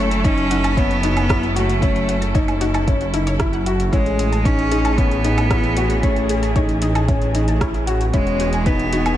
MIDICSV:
0, 0, Header, 1, 7, 480
1, 0, Start_track
1, 0, Tempo, 526316
1, 1661, Time_signature, 4, 2, 24, 8
1, 8365, End_track
2, 0, Start_track
2, 0, Title_t, "Synth arpeggio sound"
2, 0, Program_c, 0, 84
2, 101, Note_on_c, 0, 81, 75
2, 174, Note_off_c, 0, 81, 0
2, 223, Note_on_c, 0, 73, 104
2, 295, Note_off_c, 0, 73, 0
2, 461, Note_on_c, 0, 66, 99
2, 534, Note_off_c, 0, 66, 0
2, 582, Note_on_c, 0, 81, 97
2, 654, Note_off_c, 0, 81, 0
2, 703, Note_on_c, 0, 64, 77
2, 775, Note_off_c, 0, 64, 0
2, 942, Note_on_c, 0, 66, 76
2, 985, Note_off_c, 0, 66, 0
2, 1063, Note_on_c, 0, 81, 71
2, 1135, Note_off_c, 0, 81, 0
2, 1180, Note_on_c, 0, 73, 102
2, 1253, Note_off_c, 0, 73, 0
2, 1301, Note_on_c, 0, 64, 76
2, 1410, Note_off_c, 0, 64, 0
2, 1421, Note_on_c, 0, 73, 81
2, 1531, Note_off_c, 0, 73, 0
2, 1660, Note_on_c, 0, 64, 100
2, 1734, Note_off_c, 0, 64, 0
2, 1899, Note_on_c, 0, 66, 76
2, 1944, Note_off_c, 0, 66, 0
2, 2020, Note_on_c, 0, 81, 73
2, 2094, Note_off_c, 0, 81, 0
2, 2140, Note_on_c, 0, 73, 105
2, 2213, Note_off_c, 0, 73, 0
2, 2382, Note_on_c, 0, 66, 98
2, 2454, Note_off_c, 0, 66, 0
2, 2500, Note_on_c, 0, 81, 92
2, 2573, Note_off_c, 0, 81, 0
2, 2621, Note_on_c, 0, 64, 83
2, 2694, Note_off_c, 0, 64, 0
2, 2860, Note_on_c, 0, 64, 98
2, 2934, Note_off_c, 0, 64, 0
2, 2980, Note_on_c, 0, 73, 107
2, 3053, Note_off_c, 0, 73, 0
2, 3101, Note_on_c, 0, 64, 90
2, 3174, Note_off_c, 0, 64, 0
2, 3220, Note_on_c, 0, 78, 103
2, 3293, Note_off_c, 0, 78, 0
2, 3340, Note_on_c, 0, 76, 76
2, 3384, Note_off_c, 0, 76, 0
2, 3582, Note_on_c, 0, 64, 106
2, 3654, Note_off_c, 0, 64, 0
2, 3820, Note_on_c, 0, 68, 78
2, 3864, Note_off_c, 0, 68, 0
2, 3943, Note_on_c, 0, 81, 78
2, 4015, Note_off_c, 0, 81, 0
2, 4064, Note_on_c, 0, 73, 99
2, 4135, Note_off_c, 0, 73, 0
2, 4302, Note_on_c, 0, 68, 102
2, 4374, Note_off_c, 0, 68, 0
2, 4422, Note_on_c, 0, 81, 95
2, 4494, Note_off_c, 0, 81, 0
2, 4541, Note_on_c, 0, 64, 76
2, 4614, Note_off_c, 0, 64, 0
2, 4782, Note_on_c, 0, 68, 75
2, 4825, Note_off_c, 0, 68, 0
2, 4901, Note_on_c, 0, 81, 71
2, 4974, Note_off_c, 0, 81, 0
2, 5021, Note_on_c, 0, 73, 101
2, 5094, Note_off_c, 0, 73, 0
2, 5142, Note_on_c, 0, 64, 76
2, 5251, Note_off_c, 0, 64, 0
2, 5261, Note_on_c, 0, 73, 76
2, 5371, Note_off_c, 0, 73, 0
2, 5500, Note_on_c, 0, 64, 102
2, 5574, Note_off_c, 0, 64, 0
2, 5743, Note_on_c, 0, 68, 80
2, 5785, Note_off_c, 0, 68, 0
2, 5861, Note_on_c, 0, 81, 80
2, 5934, Note_off_c, 0, 81, 0
2, 5982, Note_on_c, 0, 73, 105
2, 6055, Note_off_c, 0, 73, 0
2, 6222, Note_on_c, 0, 68, 91
2, 6295, Note_off_c, 0, 68, 0
2, 6342, Note_on_c, 0, 81, 96
2, 6414, Note_off_c, 0, 81, 0
2, 6462, Note_on_c, 0, 64, 82
2, 6534, Note_off_c, 0, 64, 0
2, 6703, Note_on_c, 0, 68, 71
2, 6746, Note_off_c, 0, 68, 0
2, 6824, Note_on_c, 0, 81, 80
2, 6895, Note_off_c, 0, 81, 0
2, 6942, Note_on_c, 0, 73, 105
2, 7014, Note_off_c, 0, 73, 0
2, 7064, Note_on_c, 0, 64, 73
2, 7172, Note_off_c, 0, 64, 0
2, 7184, Note_on_c, 0, 73, 79
2, 7292, Note_off_c, 0, 73, 0
2, 7424, Note_on_c, 0, 64, 97
2, 7495, Note_off_c, 0, 64, 0
2, 7666, Note_on_c, 0, 66, 76
2, 7707, Note_off_c, 0, 66, 0
2, 7785, Note_on_c, 0, 80, 78
2, 7856, Note_off_c, 0, 80, 0
2, 7904, Note_on_c, 0, 71, 106
2, 7975, Note_off_c, 0, 71, 0
2, 8143, Note_on_c, 0, 66, 100
2, 8215, Note_off_c, 0, 66, 0
2, 8262, Note_on_c, 0, 80, 101
2, 8334, Note_off_c, 0, 80, 0
2, 8365, End_track
3, 0, Start_track
3, 0, Title_t, "Grand piano"
3, 0, Program_c, 1, 0
3, 221, Note_on_c, 1, 63, 94
3, 370, Note_off_c, 1, 63, 0
3, 460, Note_on_c, 1, 63, 75
3, 609, Note_off_c, 1, 63, 0
3, 700, Note_on_c, 1, 61, 83
3, 849, Note_off_c, 1, 61, 0
3, 941, Note_on_c, 1, 63, 82
3, 1090, Note_off_c, 1, 63, 0
3, 1181, Note_on_c, 1, 64, 81
3, 1330, Note_off_c, 1, 64, 0
3, 1421, Note_on_c, 1, 66, 87
3, 1570, Note_off_c, 1, 66, 0
3, 1658, Note_on_c, 1, 61, 89
3, 1957, Note_off_c, 1, 61, 0
3, 2138, Note_on_c, 1, 63, 90
3, 2288, Note_off_c, 1, 63, 0
3, 2375, Note_on_c, 1, 63, 78
3, 2526, Note_off_c, 1, 63, 0
3, 2621, Note_on_c, 1, 61, 82
3, 2770, Note_off_c, 1, 61, 0
3, 2863, Note_on_c, 1, 63, 75
3, 3011, Note_off_c, 1, 63, 0
3, 3100, Note_on_c, 1, 64, 87
3, 3249, Note_off_c, 1, 64, 0
3, 3341, Note_on_c, 1, 66, 86
3, 3490, Note_off_c, 1, 66, 0
3, 3580, Note_on_c, 1, 61, 95
3, 3878, Note_off_c, 1, 61, 0
3, 4062, Note_on_c, 1, 63, 86
3, 4210, Note_off_c, 1, 63, 0
3, 4302, Note_on_c, 1, 63, 84
3, 4451, Note_off_c, 1, 63, 0
3, 4542, Note_on_c, 1, 61, 78
3, 4691, Note_off_c, 1, 61, 0
3, 4783, Note_on_c, 1, 63, 85
3, 4931, Note_off_c, 1, 63, 0
3, 5026, Note_on_c, 1, 64, 88
3, 5173, Note_off_c, 1, 64, 0
3, 5264, Note_on_c, 1, 66, 88
3, 5412, Note_off_c, 1, 66, 0
3, 5500, Note_on_c, 1, 61, 97
3, 5798, Note_off_c, 1, 61, 0
3, 5980, Note_on_c, 1, 63, 90
3, 6129, Note_off_c, 1, 63, 0
3, 6222, Note_on_c, 1, 63, 78
3, 6370, Note_off_c, 1, 63, 0
3, 6460, Note_on_c, 1, 61, 78
3, 6609, Note_off_c, 1, 61, 0
3, 6700, Note_on_c, 1, 63, 87
3, 6849, Note_off_c, 1, 63, 0
3, 6938, Note_on_c, 1, 64, 86
3, 7088, Note_off_c, 1, 64, 0
3, 7178, Note_on_c, 1, 66, 91
3, 7328, Note_off_c, 1, 66, 0
3, 7419, Note_on_c, 1, 61, 99
3, 7717, Note_off_c, 1, 61, 0
3, 7901, Note_on_c, 1, 63, 94
3, 8050, Note_off_c, 1, 63, 0
3, 8144, Note_on_c, 1, 63, 81
3, 8292, Note_off_c, 1, 63, 0
3, 8365, End_track
4, 0, Start_track
4, 0, Title_t, "String quartet"
4, 0, Program_c, 2, 48
4, 0, Note_on_c, 2, 54, 75
4, 0, Note_on_c, 2, 61, 69
4, 0, Note_on_c, 2, 64, 68
4, 0, Note_on_c, 2, 69, 80
4, 3543, Note_off_c, 2, 54, 0
4, 3543, Note_off_c, 2, 69, 0
4, 3544, Note_off_c, 2, 61, 0
4, 3544, Note_off_c, 2, 64, 0
4, 3579, Note_on_c, 2, 52, 67
4, 3581, Note_on_c, 2, 61, 77
4, 3583, Note_on_c, 2, 68, 80
4, 7383, Note_off_c, 2, 52, 0
4, 7384, Note_off_c, 2, 61, 0
4, 7385, Note_off_c, 2, 68, 0
4, 7417, Note_on_c, 2, 59, 70
4, 7418, Note_on_c, 2, 52, 75
4, 7419, Note_on_c, 2, 66, 72
4, 7422, Note_on_c, 2, 68, 85
4, 8365, Note_off_c, 2, 52, 0
4, 8365, Note_off_c, 2, 59, 0
4, 8365, Note_off_c, 2, 66, 0
4, 8365, Note_off_c, 2, 68, 0
4, 8365, End_track
5, 0, Start_track
5, 0, Title_t, "Cello"
5, 0, Program_c, 3, 42
5, 0, Note_on_c, 3, 57, 99
5, 228, Note_on_c, 3, 61, 113
5, 241, Note_off_c, 3, 57, 0
5, 714, Note_on_c, 3, 59, 112
5, 728, Note_off_c, 3, 61, 0
5, 1427, Note_off_c, 3, 59, 0
5, 1435, Note_on_c, 3, 57, 89
5, 2351, Note_off_c, 3, 57, 0
5, 3577, Note_on_c, 3, 56, 96
5, 4058, Note_on_c, 3, 61, 111
5, 4072, Note_off_c, 3, 56, 0
5, 4534, Note_on_c, 3, 59, 103
5, 4548, Note_off_c, 3, 61, 0
5, 5495, Note_on_c, 3, 57, 81
5, 5509, Note_off_c, 3, 59, 0
5, 5978, Note_off_c, 3, 57, 0
5, 7418, Note_on_c, 3, 56, 94
5, 7899, Note_on_c, 3, 59, 102
5, 7913, Note_off_c, 3, 56, 0
5, 8365, Note_off_c, 3, 59, 0
5, 8365, End_track
6, 0, Start_track
6, 0, Title_t, "Detuned saw bass"
6, 0, Program_c, 4, 39
6, 0, Note_on_c, 4, 30, 95
6, 3556, Note_off_c, 4, 30, 0
6, 3581, Note_on_c, 4, 33, 94
6, 7396, Note_off_c, 4, 33, 0
6, 7420, Note_on_c, 4, 28, 88
6, 8365, Note_off_c, 4, 28, 0
6, 8365, End_track
7, 0, Start_track
7, 0, Title_t, "Drums"
7, 104, Note_on_c, 9, 42, 32
7, 195, Note_off_c, 9, 42, 0
7, 223, Note_on_c, 9, 36, 101
7, 225, Note_on_c, 9, 42, 41
7, 314, Note_off_c, 9, 36, 0
7, 316, Note_off_c, 9, 42, 0
7, 343, Note_on_c, 9, 42, 22
7, 434, Note_off_c, 9, 42, 0
7, 465, Note_on_c, 9, 42, 75
7, 556, Note_off_c, 9, 42, 0
7, 587, Note_on_c, 9, 42, 31
7, 587, Note_on_c, 9, 77, 61
7, 678, Note_off_c, 9, 42, 0
7, 678, Note_off_c, 9, 77, 0
7, 703, Note_on_c, 9, 36, 103
7, 707, Note_on_c, 9, 42, 41
7, 794, Note_off_c, 9, 36, 0
7, 798, Note_off_c, 9, 42, 0
7, 827, Note_on_c, 9, 42, 23
7, 919, Note_off_c, 9, 42, 0
7, 943, Note_on_c, 9, 42, 80
7, 1034, Note_off_c, 9, 42, 0
7, 1064, Note_on_c, 9, 42, 33
7, 1064, Note_on_c, 9, 77, 62
7, 1156, Note_off_c, 9, 42, 0
7, 1156, Note_off_c, 9, 77, 0
7, 1183, Note_on_c, 9, 36, 114
7, 1186, Note_on_c, 9, 37, 75
7, 1186, Note_on_c, 9, 42, 43
7, 1274, Note_off_c, 9, 36, 0
7, 1278, Note_off_c, 9, 37, 0
7, 1278, Note_off_c, 9, 42, 0
7, 1308, Note_on_c, 9, 42, 22
7, 1399, Note_off_c, 9, 42, 0
7, 1427, Note_on_c, 9, 42, 71
7, 1518, Note_off_c, 9, 42, 0
7, 1546, Note_on_c, 9, 42, 33
7, 1637, Note_off_c, 9, 42, 0
7, 1663, Note_on_c, 9, 36, 93
7, 1665, Note_on_c, 9, 42, 39
7, 1754, Note_off_c, 9, 36, 0
7, 1757, Note_off_c, 9, 42, 0
7, 1786, Note_on_c, 9, 42, 22
7, 1878, Note_off_c, 9, 42, 0
7, 1905, Note_on_c, 9, 42, 73
7, 1996, Note_off_c, 9, 42, 0
7, 2024, Note_on_c, 9, 42, 32
7, 2115, Note_off_c, 9, 42, 0
7, 2142, Note_on_c, 9, 36, 110
7, 2144, Note_on_c, 9, 42, 41
7, 2233, Note_off_c, 9, 36, 0
7, 2235, Note_off_c, 9, 42, 0
7, 2264, Note_on_c, 9, 42, 22
7, 2264, Note_on_c, 9, 77, 58
7, 2355, Note_off_c, 9, 42, 0
7, 2355, Note_off_c, 9, 77, 0
7, 2381, Note_on_c, 9, 42, 76
7, 2472, Note_off_c, 9, 42, 0
7, 2503, Note_on_c, 9, 42, 31
7, 2503, Note_on_c, 9, 77, 57
7, 2594, Note_off_c, 9, 42, 0
7, 2594, Note_off_c, 9, 77, 0
7, 2622, Note_on_c, 9, 36, 94
7, 2623, Note_on_c, 9, 42, 41
7, 2713, Note_off_c, 9, 36, 0
7, 2714, Note_off_c, 9, 42, 0
7, 2743, Note_on_c, 9, 42, 23
7, 2834, Note_off_c, 9, 42, 0
7, 2861, Note_on_c, 9, 42, 79
7, 2952, Note_off_c, 9, 42, 0
7, 2981, Note_on_c, 9, 42, 35
7, 3073, Note_off_c, 9, 42, 0
7, 3097, Note_on_c, 9, 37, 69
7, 3097, Note_on_c, 9, 42, 43
7, 3101, Note_on_c, 9, 36, 105
7, 3188, Note_off_c, 9, 37, 0
7, 3188, Note_off_c, 9, 42, 0
7, 3193, Note_off_c, 9, 36, 0
7, 3220, Note_on_c, 9, 42, 22
7, 3311, Note_off_c, 9, 42, 0
7, 3341, Note_on_c, 9, 42, 71
7, 3432, Note_off_c, 9, 42, 0
7, 3464, Note_on_c, 9, 42, 33
7, 3555, Note_off_c, 9, 42, 0
7, 3581, Note_on_c, 9, 36, 89
7, 3584, Note_on_c, 9, 42, 42
7, 3673, Note_off_c, 9, 36, 0
7, 3675, Note_off_c, 9, 42, 0
7, 3704, Note_on_c, 9, 42, 21
7, 3795, Note_off_c, 9, 42, 0
7, 3823, Note_on_c, 9, 42, 73
7, 3914, Note_off_c, 9, 42, 0
7, 3945, Note_on_c, 9, 42, 31
7, 4037, Note_off_c, 9, 42, 0
7, 4061, Note_on_c, 9, 36, 95
7, 4064, Note_on_c, 9, 42, 43
7, 4152, Note_off_c, 9, 36, 0
7, 4155, Note_off_c, 9, 42, 0
7, 4184, Note_on_c, 9, 42, 21
7, 4275, Note_off_c, 9, 42, 0
7, 4301, Note_on_c, 9, 42, 74
7, 4392, Note_off_c, 9, 42, 0
7, 4422, Note_on_c, 9, 42, 28
7, 4422, Note_on_c, 9, 77, 59
7, 4513, Note_off_c, 9, 42, 0
7, 4513, Note_off_c, 9, 77, 0
7, 4541, Note_on_c, 9, 36, 99
7, 4543, Note_on_c, 9, 42, 40
7, 4632, Note_off_c, 9, 36, 0
7, 4635, Note_off_c, 9, 42, 0
7, 4664, Note_on_c, 9, 42, 22
7, 4755, Note_off_c, 9, 42, 0
7, 4783, Note_on_c, 9, 42, 72
7, 4875, Note_off_c, 9, 42, 0
7, 4905, Note_on_c, 9, 42, 31
7, 4905, Note_on_c, 9, 77, 65
7, 4996, Note_off_c, 9, 42, 0
7, 4996, Note_off_c, 9, 77, 0
7, 5021, Note_on_c, 9, 36, 102
7, 5021, Note_on_c, 9, 37, 66
7, 5021, Note_on_c, 9, 42, 41
7, 5112, Note_off_c, 9, 36, 0
7, 5112, Note_off_c, 9, 37, 0
7, 5112, Note_off_c, 9, 42, 0
7, 5140, Note_on_c, 9, 42, 22
7, 5231, Note_off_c, 9, 42, 0
7, 5259, Note_on_c, 9, 42, 73
7, 5350, Note_off_c, 9, 42, 0
7, 5379, Note_on_c, 9, 42, 31
7, 5470, Note_off_c, 9, 42, 0
7, 5500, Note_on_c, 9, 36, 80
7, 5501, Note_on_c, 9, 42, 40
7, 5592, Note_off_c, 9, 36, 0
7, 5592, Note_off_c, 9, 42, 0
7, 5621, Note_on_c, 9, 42, 20
7, 5712, Note_off_c, 9, 42, 0
7, 5740, Note_on_c, 9, 42, 76
7, 5831, Note_off_c, 9, 42, 0
7, 5862, Note_on_c, 9, 42, 29
7, 5953, Note_off_c, 9, 42, 0
7, 5980, Note_on_c, 9, 36, 93
7, 5980, Note_on_c, 9, 42, 39
7, 6071, Note_off_c, 9, 36, 0
7, 6071, Note_off_c, 9, 42, 0
7, 6100, Note_on_c, 9, 42, 22
7, 6191, Note_off_c, 9, 42, 0
7, 6217, Note_on_c, 9, 42, 70
7, 6308, Note_off_c, 9, 42, 0
7, 6341, Note_on_c, 9, 42, 28
7, 6341, Note_on_c, 9, 77, 61
7, 6432, Note_off_c, 9, 42, 0
7, 6432, Note_off_c, 9, 77, 0
7, 6461, Note_on_c, 9, 36, 94
7, 6461, Note_on_c, 9, 42, 40
7, 6552, Note_off_c, 9, 36, 0
7, 6552, Note_off_c, 9, 42, 0
7, 6580, Note_on_c, 9, 42, 20
7, 6671, Note_off_c, 9, 42, 0
7, 6700, Note_on_c, 9, 42, 70
7, 6791, Note_off_c, 9, 42, 0
7, 6820, Note_on_c, 9, 42, 31
7, 6911, Note_off_c, 9, 42, 0
7, 6941, Note_on_c, 9, 36, 100
7, 6942, Note_on_c, 9, 37, 69
7, 6942, Note_on_c, 9, 42, 40
7, 7032, Note_off_c, 9, 36, 0
7, 7033, Note_off_c, 9, 37, 0
7, 7033, Note_off_c, 9, 42, 0
7, 7062, Note_on_c, 9, 42, 20
7, 7153, Note_off_c, 9, 42, 0
7, 7181, Note_on_c, 9, 42, 70
7, 7272, Note_off_c, 9, 42, 0
7, 7302, Note_on_c, 9, 42, 31
7, 7394, Note_off_c, 9, 42, 0
7, 7419, Note_on_c, 9, 42, 42
7, 7421, Note_on_c, 9, 36, 85
7, 7511, Note_off_c, 9, 42, 0
7, 7512, Note_off_c, 9, 36, 0
7, 7540, Note_on_c, 9, 42, 20
7, 7631, Note_off_c, 9, 42, 0
7, 7658, Note_on_c, 9, 42, 68
7, 7750, Note_off_c, 9, 42, 0
7, 7776, Note_on_c, 9, 42, 28
7, 7867, Note_off_c, 9, 42, 0
7, 7898, Note_on_c, 9, 42, 38
7, 7900, Note_on_c, 9, 36, 95
7, 7989, Note_off_c, 9, 42, 0
7, 7991, Note_off_c, 9, 36, 0
7, 8021, Note_on_c, 9, 42, 21
7, 8112, Note_off_c, 9, 42, 0
7, 8140, Note_on_c, 9, 42, 75
7, 8232, Note_off_c, 9, 42, 0
7, 8260, Note_on_c, 9, 42, 28
7, 8260, Note_on_c, 9, 77, 61
7, 8352, Note_off_c, 9, 42, 0
7, 8352, Note_off_c, 9, 77, 0
7, 8365, End_track
0, 0, End_of_file